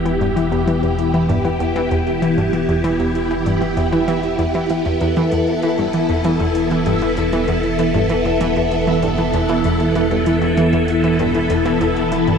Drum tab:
HH |xxxxxxxxxxxxxxxx|xxxxxxxxxxxxxxxx|xxxxxxxxxxxxxxxx|xxxxxxxxxxxxxxxx|
T1 |--o-------------|--o------oo---o-|--o-------------|--o------oo---o-|

HH |xxxxxxxxxxxxxxxx|
T1 |--o-------------|